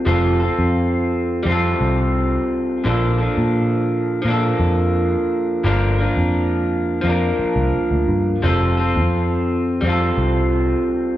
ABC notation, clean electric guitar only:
X:1
M:4/4
L:1/8
Q:1/4=86
K:F
V:1 name="Clean electric guitar"
[F,G,CFA] [CFA]3 [G,CFA]4 | [B,,D,F,B,DA] [F,B,DA]3 [F,B,DA]4 | [G,,D,F,B,DB] [F,B,DB]3 [F,B,DB]4 | [F,G,CFA] [CFA]3 [G,CFA]4 |]